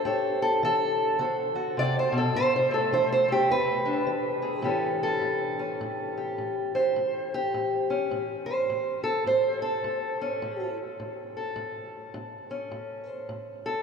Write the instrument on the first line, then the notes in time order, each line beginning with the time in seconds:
steel-string acoustic guitar
0.05 A2 G4 A4 C#5
0.42 A4
0.63 E3 A4
1.19 D3 F#4 A4 C5
1.55 F#4
1.77 C3 D5
1.99 C5
2.12 B2
2.18 A4
2.35 A2 C5
2.56 C5
2.71 A3 A4
2.93 E3 C5
3.12 C5
3.28 A3 G4
3.50 E2 B4
3.85 D4
4.07 E3
4.42 G#4
4.62 A2 E3 C#4 G4 A4
5.03 A4
5.21 A2
5.59 C#4
5.81 A2
6.17 G4
6.38 A2
6.75 G4 C5
6.96 A2
7.34 G4
7.54 A2
7.90 C#4
8.11 A2
8.46 C5
8.70 A2
9.04 A4
9.26 A2 C5
9.62 A4
9.84 A2
10.21 C#4
10.42 A2
11.00 A2
11.37 A4
11.56 A2
12.14 A2
12.51 C#4
12.71 A2
13.07 C5
13.29 A2
13.66 A4